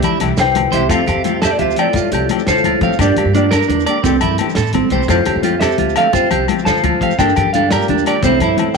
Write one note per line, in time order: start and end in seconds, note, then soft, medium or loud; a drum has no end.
0.00 0.70 G4 medium
0.00 0.73 E5 medium
0.00 closed hi-hat medium
0.00 low conga loud
0.04 0.18 E4 medium
0.04 low agogo medium
0.20 0.35 C2 medium
0.20 0.31 E3 medium
0.20 0.31 A3 medium
0.20 0.32 E4 medium
0.20 0.32 G4 medium
0.20 snare soft
0.20 closed hi-hat medium
0.20 high conga medium
0.20 low agogo medium
0.37 0.66 C2 medium
0.37 0.71 E3 medium
0.37 0.71 C5 medium
0.37 0.75 G5 loud
0.37 muted clean electric guitar stroke medium
0.37 snare medium
0.37 closed hi-hat medium
0.37 shekere medium
0.55 closed hi-hat medium
0.55 high conga loud
0.55 low conga medium
0.55 low agogo medium
0.65 low conga soft
0.71 0.87 C2 medium
0.71 0.93 C3 medium
0.71 0.83 E3 medium
0.71 0.84 E4 medium
0.71 0.90 G4 medium
0.71 0.84 G4 medium
0.71 0.86 C5 medium
0.71 0.91 E5 medium
0.71 closed hi-hat medium
0.71 low conga soft
0.81 low conga soft
0.89 1.04 F2 medium
0.89 1.44 C3 medium
0.89 1.00 F3 medium
0.89 1.00 A3 medium
0.89 1.01 C4 medium
0.89 1.05 F4 medium
0.89 1.01 G4 medium
0.89 1.38 A4 medium
0.89 1.43 F5 medium
0.89 kick medium
0.89 closed hi-hat medium
0.89 high conga medium
0.89 low conga soft
0.89 low agogo medium
0.89 shekere medium
1.06 1.15 F2 medium
1.06 1.22 G4 medium
1.06 closed hi-hat soft
1.06 low conga medium
1.06 low agogo medium
1.16 1.52 F2 medium
1.24 1.36 F3 soft
1.24 1.36 A3 medium
1.24 1.36 C4 medium
1.24 1.39 F4 medium
1.24 1.36 G4 medium
1.24 closed hi-hat soft
1.24 high conga medium
1.24 shekere soft
1.42 1.50 C3 medium
1.42 1.50 G4 medium
1.42 1.56 A4 medium
1.42 1.51 E5 medium
1.42 snare medium
1.42 closed hi-hat medium
1.42 low conga soft
1.42 low agogo medium
1.42 shekere medium
1.51 1.57 A#2 medium
1.51 1.57 D5 medium
1.58 1.74 D2 medium
1.58 1.78 C3 medium
1.58 1.75 F4 medium
1.58 1.77 G4 medium
1.58 1.79 E5 medium
1.58 closed hi-hat soft
1.58 high conga medium
1.58 low conga medium
1.71 shekere soft
1.76 2.44 A2 medium
1.76 1.88 F3 medium
1.76 1.88 A3 soft
1.76 1.88 C4 medium
1.76 2.44 F4 medium
1.76 1.89 G4 medium
1.76 2.44 D5 medium
1.76 1.93 G5 medium
1.76 closed hi-hat soft
1.76 low agogo medium
1.93 2.10 F4 medium
1.93 kick medium
1.93 closed hi-hat medium
1.93 high conga medium
1.93 shekere medium
2.03 low conga soft
2.11 2.26 C2 medium
2.11 2.27 G4 medium
2.11 closed hi-hat soft
2.11 low conga medium
2.11 low agogo medium
2.29 2.40 F3 medium
2.29 2.41 A3 medium
2.29 2.41 C4 medium
2.29 2.42 G4 medium
2.29 closed hi-hat soft
2.29 high conga medium
2.29 low agogo medium
2.38 low conga soft
2.38 shekere soft
2.46 2.96 A2 medium
2.46 2.62 D3 medium
2.46 2.97 F4 medium
2.46 2.62 A4 medium
2.46 2.96 C5 medium
2.46 snare medium
2.46 closed hi-hat soft
2.46 low conga soft
2.46 shekere medium
2.58 shekere soft
2.64 2.72 D2 medium
2.64 2.79 F4 medium
2.64 closed hi-hat soft
2.64 high conga medium
2.64 low conga medium
2.64 low agogo medium
2.81 2.89 F3 medium
2.81 2.92 F3 medium
2.81 2.93 A3 medium
2.81 2.93 C4 medium
2.81 2.94 G4 medium
2.81 2.97 F5 medium
2.81 kick medium
2.81 closed hi-hat soft
2.81 low conga soft
2.93 shekere soft
2.99 3.13 G2 medium
2.99 3.32 A#2 medium
2.99 3.10 A#3 medium
2.99 3.10 D4 medium
2.99 3.15 D4 medium
2.99 3.10 G4 medium
2.99 3.34 G4 medium
2.99 3.33 D5 medium
2.99 kick medium
2.99 closed hi-hat medium
2.99 high conga medium
2.99 low conga soft
2.99 low agogo medium
2.99 shekere medium
3.16 3.24 G2 medium
3.16 3.32 G4 medium
3.16 closed hi-hat medium
3.16 low conga medium
3.16 low agogo medium
3.25 3.61 G2 medium
3.34 3.51 A#2 medium
3.34 3.46 A#3 medium
3.34 3.49 D4 medium
3.34 3.46 D4 medium
3.34 3.51 F4 medium
3.34 3.46 G4 medium
3.34 3.51 D5 medium
3.34 closed hi-hat soft
3.34 high conga medium
3.34 shekere soft
3.51 3.84 G2 medium
3.51 3.85 D4 medium
3.51 3.65 A#4 medium
3.51 3.85 A#4 medium
3.51 snare medium
3.51 closed hi-hat medium
3.51 low conga soft
3.51 low agogo medium
3.51 shekere medium
3.63 shekere soft
3.69 3.83 E2 medium
3.69 3.83 D4 medium
3.69 closed hi-hat soft
3.69 high conga medium
3.69 low conga medium
3.80 shekere soft
3.86 3.98 A#3 medium
3.86 3.99 D4 medium
3.86 3.99 G4 medium
3.86 4.01 D5 medium
3.86 closed hi-hat medium
3.86 low agogo medium
4.03 4.23 C2 medium
4.03 4.40 E2 medium
4.03 4.15 E3 medium
4.03 4.15 A3 medium
4.03 4.18 C4 medium
4.03 4.42 C4 soft
4.03 4.16 C4 medium
4.03 4.16 G4 medium
4.03 4.42 A4 medium
4.03 kick medium
4.03 closed hi-hat medium
4.03 high conga medium
4.03 shekere loud
4.14 low conga soft
4.21 4.36 G2 medium
4.21 4.36 E4 medium
4.21 closed hi-hat soft
4.21 low conga medium
4.21 low agogo medium
4.38 4.50 E3 medium
4.38 4.50 A3 medium
4.38 4.51 C4 soft
4.38 4.51 G4 medium
4.38 closed hi-hat medium
4.38 high conga medium
4.38 low agogo medium
4.50 low conga soft
4.50 shekere soft
4.55 4.70 A2 medium
4.55 4.71 A4 medium
4.55 snare medium
4.55 closed hi-hat medium
4.55 low conga soft
4.55 shekere medium
4.67 shekere soft
4.72 4.81 A1 medium
4.72 4.89 C4 medium
4.72 closed hi-hat soft
4.72 high conga loud
4.72 low conga medium
4.72 low agogo medium
4.90 4.98 C2 medium
4.90 5.02 E3 medium
4.90 5.02 A3 medium
4.90 5.03 C4 medium
4.90 5.03 G4 medium
4.90 5.06 C5 medium
4.90 closed hi-hat soft
4.90 low conga soft
5.02 shekere soft
5.08 5.23 F2 medium
5.08 5.57 A2 medium
5.08 5.19 F3 medium
5.08 5.19 A3 medium
5.08 5.20 C4 medium
5.08 5.58 F4 medium
5.08 5.24 F4 medium
5.08 5.20 G4 medium
5.08 5.63 C5 medium
5.08 kick medium
5.08 closed hi-hat medium
5.08 high conga medium
5.08 low conga soft
5.08 low agogo medium
5.08 shekere medium
5.25 5.34 F2 medium
5.25 5.41 G4 medium
5.25 closed hi-hat medium
5.25 low conga medium
5.25 low agogo medium
5.36 5.71 F2 medium
5.42 5.54 F3 medium
5.42 5.54 A3 medium
5.42 5.55 C4 medium
5.42 5.58 F4 medium
5.42 5.55 G4 medium
5.42 closed hi-hat soft
5.42 high conga medium
5.42 shekere soft
5.60 5.94 C3 medium
5.60 5.94 G4 medium
5.60 5.76 A4 medium
5.60 5.93 E5 medium
5.60 snare medium
5.60 closed hi-hat medium
5.60 low conga soft
5.60 low agogo medium
5.60 shekere medium
5.72 shekere soft
5.78 5.93 D2 medium
5.78 5.93 F4 medium
5.78 closed hi-hat soft
5.78 high conga medium
5.78 low conga medium
5.89 shekere soft
5.96 6.15 D3 medium
5.96 6.07 F3 medium
5.96 6.07 A3 medium
5.96 6.08 C4 medium
5.96 6.08 G4 medium
5.96 6.13 A4 medium
5.96 6.13 F5 medium
5.96 6.11 F5 medium
5.96 snare soft
5.96 closed hi-hat soft
5.96 low agogo medium
6.13 6.48 C3 medium
6.13 6.28 F4 medium
6.13 6.47 C5 medium
6.13 6.48 G5 medium
6.13 kick medium
6.13 closed hi-hat medium
6.13 high conga loud
6.13 shekere medium
6.23 low conga soft
6.31 6.45 C2 medium
6.31 6.46 G4 medium
6.31 closed hi-hat medium
6.31 low conga medium
6.31 low agogo medium
6.48 6.59 F3 soft
6.48 6.60 C4 medium
6.48 6.60 G4 medium
6.48 closed hi-hat medium
6.48 high conga loud
6.48 low agogo medium
6.58 low conga soft
6.58 shekere soft
6.65 6.81 D3 medium
6.65 7.14 F3 medium
6.65 6.81 A4 medium
6.65 7.16 C5 medium
6.65 7.14 A5 loud
6.65 snare medium
6.65 closed hi-hat medium
6.65 low conga soft
6.65 shekere medium
6.77 shekere soft
6.83 6.91 D2 medium
6.83 6.98 F4 medium
6.83 closed hi-hat soft
6.83 high conga medium
6.83 low conga loud
6.83 low agogo medium
7.00 7.08 F2 medium
7.00 7.11 F3 medium
7.00 7.12 A3 medium
7.00 7.12 C4 medium
7.00 7.13 G4 medium
7.00 7.16 F5 medium
7.00 kick medium
7.00 closed hi-hat medium
7.11 shekere soft
7.18 7.33 G2 medium
7.18 7.51 D3 medium
7.18 7.29 A#3 medium
7.18 7.33 D4 medium
7.18 7.30 D4 medium
7.18 7.30 G4 medium
7.18 7.53 A#4 medium
7.18 7.51 G5 medium
7.18 kick medium
7.18 closed hi-hat medium
7.18 high conga loud
7.18 low conga soft
7.18 low agogo medium
7.18 shekere medium
7.29 low conga soft
7.29 shekere soft
7.36 7.44 G2 medium
7.36 7.51 G4 medium
7.36 closed hi-hat medium
7.36 low conga medium
7.36 low agogo medium
7.45 7.81 G2 medium
7.45 low conga soft
7.53 7.72 D3 medium
7.53 7.69 D4 medium
7.53 7.65 D4 medium
7.53 7.66 G4 medium
7.53 7.71 A4 medium
7.53 7.69 F5 medium
7.53 closed hi-hat soft
7.53 high conga medium
7.53 shekere soft
7.69 8.21 A#2 medium
7.69 8.20 G4 medium
7.69 7.85 A#4 medium
7.69 8.24 D5 medium
7.69 snare loud
7.69 closed hi-hat medium
7.69 low agogo medium
7.69 shekere medium
7.81 shekere soft
7.88 8.03 E2 medium
7.88 8.03 D4 medium
7.88 closed hi-hat soft
7.88 high conga medium
7.88 low conga medium
7.98 shekere soft
8.06 8.16 A#3 medium
8.06 8.17 D4 medium
8.06 8.17 G4 medium
8.06 8.21 D5 medium
8.06 snare soft
8.06 closed hi-hat soft
8.06 low agogo medium
8.21 8.41 C2 medium
8.21 8.71 A2 medium
8.21 8.33 E3 medium
8.21 8.33 A3 medium
8.21 8.33 C4 medium
8.21 8.38 C4 medium
8.21 8.34 G4 medium
8.21 8.75 C5 medium
8.21 kick medium
8.21 closed hi-hat medium
8.21 high conga loud
8.21 shekere loud
8.26 8.73 E4 medium
8.40 8.54 G2 medium
8.40 8.56 E4 medium
8.40 closed hi-hat soft
8.40 low conga medium
8.40 low agogo medium
8.56 8.67 E3 soft
8.56 8.68 A3 medium
8.56 8.68 C4 medium
8.56 closed hi-hat soft
8.56 high conga medium
8.56 low agogo medium
8.66 low conga soft